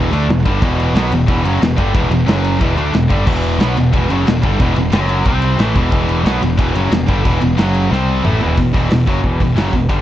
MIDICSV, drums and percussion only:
0, 0, Header, 1, 2, 480
1, 0, Start_track
1, 0, Key_signature, 1, "minor"
1, 0, Tempo, 331309
1, 897, Time_signature, 4, 2, 24, 8
1, 14510, End_track
2, 0, Start_track
2, 0, Title_t, "Drums"
2, 186, Note_on_c, 9, 51, 75
2, 331, Note_off_c, 9, 51, 0
2, 423, Note_on_c, 9, 51, 90
2, 441, Note_on_c, 9, 38, 110
2, 568, Note_off_c, 9, 51, 0
2, 586, Note_off_c, 9, 38, 0
2, 661, Note_on_c, 9, 36, 93
2, 664, Note_on_c, 9, 51, 64
2, 806, Note_off_c, 9, 36, 0
2, 809, Note_off_c, 9, 51, 0
2, 901, Note_on_c, 9, 36, 109
2, 905, Note_on_c, 9, 51, 95
2, 1046, Note_off_c, 9, 36, 0
2, 1050, Note_off_c, 9, 51, 0
2, 1151, Note_on_c, 9, 51, 68
2, 1296, Note_off_c, 9, 51, 0
2, 1386, Note_on_c, 9, 51, 114
2, 1404, Note_on_c, 9, 38, 117
2, 1531, Note_off_c, 9, 51, 0
2, 1548, Note_off_c, 9, 38, 0
2, 1623, Note_on_c, 9, 51, 82
2, 1767, Note_off_c, 9, 51, 0
2, 1859, Note_on_c, 9, 51, 96
2, 1860, Note_on_c, 9, 36, 100
2, 2004, Note_off_c, 9, 51, 0
2, 2005, Note_off_c, 9, 36, 0
2, 2105, Note_on_c, 9, 51, 82
2, 2250, Note_off_c, 9, 51, 0
2, 2347, Note_on_c, 9, 51, 105
2, 2365, Note_on_c, 9, 38, 113
2, 2492, Note_off_c, 9, 51, 0
2, 2509, Note_off_c, 9, 38, 0
2, 2582, Note_on_c, 9, 36, 107
2, 2584, Note_on_c, 9, 51, 72
2, 2727, Note_off_c, 9, 36, 0
2, 2729, Note_off_c, 9, 51, 0
2, 2823, Note_on_c, 9, 36, 114
2, 2827, Note_on_c, 9, 51, 105
2, 2967, Note_off_c, 9, 36, 0
2, 2972, Note_off_c, 9, 51, 0
2, 3065, Note_on_c, 9, 51, 72
2, 3210, Note_off_c, 9, 51, 0
2, 3303, Note_on_c, 9, 51, 109
2, 3320, Note_on_c, 9, 38, 123
2, 3448, Note_off_c, 9, 51, 0
2, 3465, Note_off_c, 9, 38, 0
2, 3542, Note_on_c, 9, 51, 70
2, 3687, Note_off_c, 9, 51, 0
2, 3780, Note_on_c, 9, 36, 103
2, 3780, Note_on_c, 9, 51, 100
2, 3925, Note_off_c, 9, 36, 0
2, 3925, Note_off_c, 9, 51, 0
2, 4019, Note_on_c, 9, 51, 71
2, 4164, Note_off_c, 9, 51, 0
2, 4256, Note_on_c, 9, 51, 86
2, 4273, Note_on_c, 9, 38, 113
2, 4400, Note_off_c, 9, 51, 0
2, 4418, Note_off_c, 9, 38, 0
2, 4500, Note_on_c, 9, 36, 108
2, 4500, Note_on_c, 9, 51, 66
2, 4645, Note_off_c, 9, 36, 0
2, 4645, Note_off_c, 9, 51, 0
2, 4740, Note_on_c, 9, 49, 102
2, 4741, Note_on_c, 9, 36, 112
2, 4885, Note_off_c, 9, 49, 0
2, 4886, Note_off_c, 9, 36, 0
2, 4977, Note_on_c, 9, 51, 67
2, 5122, Note_off_c, 9, 51, 0
2, 5217, Note_on_c, 9, 51, 101
2, 5234, Note_on_c, 9, 38, 120
2, 5362, Note_off_c, 9, 51, 0
2, 5379, Note_off_c, 9, 38, 0
2, 5464, Note_on_c, 9, 51, 71
2, 5608, Note_off_c, 9, 51, 0
2, 5699, Note_on_c, 9, 51, 101
2, 5703, Note_on_c, 9, 36, 105
2, 5844, Note_off_c, 9, 51, 0
2, 5848, Note_off_c, 9, 36, 0
2, 5941, Note_on_c, 9, 51, 77
2, 6086, Note_off_c, 9, 51, 0
2, 6184, Note_on_c, 9, 51, 109
2, 6201, Note_on_c, 9, 38, 119
2, 6329, Note_off_c, 9, 51, 0
2, 6346, Note_off_c, 9, 38, 0
2, 6418, Note_on_c, 9, 51, 68
2, 6422, Note_on_c, 9, 36, 104
2, 6563, Note_off_c, 9, 51, 0
2, 6567, Note_off_c, 9, 36, 0
2, 6660, Note_on_c, 9, 51, 98
2, 6662, Note_on_c, 9, 36, 109
2, 6805, Note_off_c, 9, 51, 0
2, 6807, Note_off_c, 9, 36, 0
2, 6897, Note_on_c, 9, 51, 75
2, 7042, Note_off_c, 9, 51, 0
2, 7129, Note_on_c, 9, 51, 108
2, 7147, Note_on_c, 9, 38, 119
2, 7274, Note_off_c, 9, 51, 0
2, 7292, Note_off_c, 9, 38, 0
2, 7374, Note_on_c, 9, 51, 73
2, 7519, Note_off_c, 9, 51, 0
2, 7609, Note_on_c, 9, 51, 97
2, 7616, Note_on_c, 9, 36, 105
2, 7754, Note_off_c, 9, 51, 0
2, 7760, Note_off_c, 9, 36, 0
2, 7848, Note_on_c, 9, 51, 69
2, 7993, Note_off_c, 9, 51, 0
2, 8092, Note_on_c, 9, 51, 96
2, 8110, Note_on_c, 9, 38, 115
2, 8237, Note_off_c, 9, 51, 0
2, 8255, Note_off_c, 9, 38, 0
2, 8333, Note_on_c, 9, 51, 69
2, 8337, Note_on_c, 9, 36, 97
2, 8478, Note_off_c, 9, 51, 0
2, 8482, Note_off_c, 9, 36, 0
2, 8570, Note_on_c, 9, 51, 90
2, 8577, Note_on_c, 9, 36, 106
2, 8715, Note_off_c, 9, 51, 0
2, 8721, Note_off_c, 9, 36, 0
2, 8819, Note_on_c, 9, 51, 68
2, 8964, Note_off_c, 9, 51, 0
2, 9065, Note_on_c, 9, 51, 97
2, 9082, Note_on_c, 9, 38, 118
2, 9210, Note_off_c, 9, 51, 0
2, 9227, Note_off_c, 9, 38, 0
2, 9306, Note_on_c, 9, 51, 73
2, 9451, Note_off_c, 9, 51, 0
2, 9543, Note_on_c, 9, 36, 110
2, 9544, Note_on_c, 9, 51, 100
2, 9688, Note_off_c, 9, 36, 0
2, 9688, Note_off_c, 9, 51, 0
2, 9785, Note_on_c, 9, 51, 77
2, 9930, Note_off_c, 9, 51, 0
2, 10019, Note_on_c, 9, 51, 101
2, 10037, Note_on_c, 9, 38, 114
2, 10164, Note_off_c, 9, 51, 0
2, 10181, Note_off_c, 9, 38, 0
2, 10264, Note_on_c, 9, 51, 72
2, 10266, Note_on_c, 9, 36, 107
2, 10409, Note_off_c, 9, 51, 0
2, 10410, Note_off_c, 9, 36, 0
2, 10506, Note_on_c, 9, 51, 109
2, 10507, Note_on_c, 9, 36, 105
2, 10651, Note_off_c, 9, 51, 0
2, 10652, Note_off_c, 9, 36, 0
2, 10742, Note_on_c, 9, 51, 76
2, 10887, Note_off_c, 9, 51, 0
2, 10982, Note_on_c, 9, 51, 102
2, 10999, Note_on_c, 9, 38, 112
2, 11126, Note_off_c, 9, 51, 0
2, 11144, Note_off_c, 9, 38, 0
2, 11220, Note_on_c, 9, 51, 79
2, 11365, Note_off_c, 9, 51, 0
2, 11478, Note_on_c, 9, 38, 58
2, 11623, Note_off_c, 9, 38, 0
2, 11946, Note_on_c, 9, 45, 91
2, 12091, Note_off_c, 9, 45, 0
2, 12181, Note_on_c, 9, 43, 80
2, 12326, Note_off_c, 9, 43, 0
2, 12413, Note_on_c, 9, 46, 62
2, 12421, Note_on_c, 9, 36, 82
2, 12557, Note_off_c, 9, 46, 0
2, 12565, Note_off_c, 9, 36, 0
2, 12662, Note_on_c, 9, 36, 100
2, 12664, Note_on_c, 9, 46, 48
2, 12807, Note_off_c, 9, 36, 0
2, 12808, Note_off_c, 9, 46, 0
2, 12896, Note_on_c, 9, 46, 77
2, 12914, Note_on_c, 9, 38, 112
2, 13041, Note_off_c, 9, 46, 0
2, 13058, Note_off_c, 9, 38, 0
2, 13138, Note_on_c, 9, 46, 55
2, 13140, Note_on_c, 9, 36, 100
2, 13283, Note_off_c, 9, 46, 0
2, 13285, Note_off_c, 9, 36, 0
2, 13376, Note_on_c, 9, 46, 66
2, 13379, Note_on_c, 9, 36, 96
2, 13521, Note_off_c, 9, 46, 0
2, 13524, Note_off_c, 9, 36, 0
2, 13618, Note_on_c, 9, 36, 93
2, 13620, Note_on_c, 9, 46, 58
2, 13763, Note_off_c, 9, 36, 0
2, 13765, Note_off_c, 9, 46, 0
2, 13858, Note_on_c, 9, 46, 70
2, 13876, Note_on_c, 9, 38, 99
2, 14003, Note_off_c, 9, 46, 0
2, 14021, Note_off_c, 9, 38, 0
2, 14097, Note_on_c, 9, 36, 82
2, 14101, Note_on_c, 9, 46, 53
2, 14242, Note_off_c, 9, 36, 0
2, 14246, Note_off_c, 9, 46, 0
2, 14333, Note_on_c, 9, 46, 78
2, 14335, Note_on_c, 9, 36, 100
2, 14477, Note_off_c, 9, 46, 0
2, 14479, Note_off_c, 9, 36, 0
2, 14510, End_track
0, 0, End_of_file